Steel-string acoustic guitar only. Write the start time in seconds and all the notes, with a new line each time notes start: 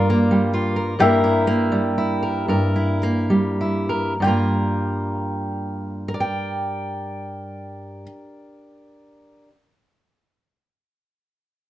Already playing: G2 G3 F4 A#4
0.10 A#3
0.31 G3
0.54 F4
0.76 A#4
0.99 G2 G3 A#3 E4 A#4
1.24 E4
1.47 A#3
1.72 G3
1.98 E4
2.23 A#4
2.48 G2 A#4
2.76 E4
3.03 A#3
3.30 G3
3.61 E4
3.89 A#4
4.20 G2 G3 A#3
4.26 F4 A#4
6.08 A#4
6.14 D5
6.20 G5